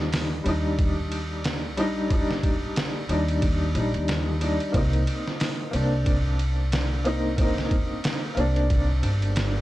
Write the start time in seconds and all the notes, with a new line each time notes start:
Already playing: D#2 G3 D4 D#4
0.00 snare
0.12 snare, open hi-hat
0.44 D#2 G3 D4, ride
0.48 D#4
0.79 kick, ride
1.12 ride
1.44 snare, ride
1.77 A#1 G3 D4 D#4, ride
2.09 G3 D4, kick, ride
2.13 D#4
2.31 snare
2.43 kick, ride
2.76 snare, ride
3.08 D#2 G3 D4 D#4, ride
3.28 ride
3.42 kick, ride
3.74 A#1 G3 D4 D#4, ride
3.94 D#2, ride
4.08 snare, ride
4.40 G3 D4 D#4, ride
4.60 ride
4.72 C2 A#3 C4, kick, ride
4.77 D#4
4.93 ride
5.07 ride
5.28 snare
5.40 snare, open hi-hat
5.71 C2 A#3 C4, ride
5.76 D4
6.06 kick, ride
6.39 ride
6.72 snare, ride
7.04 A#3 C4 D#4, ride
7.36 A#3 C4, kick, ride
7.41 D#4
7.58 snare
7.71 kick, ride
8.04 snare, ride
8.35 C2 A#3 C4, ride
8.40 D4
8.56 ride
8.70 kick, ride
9.03 G1, ride
9.22 ride
9.36 snare, ride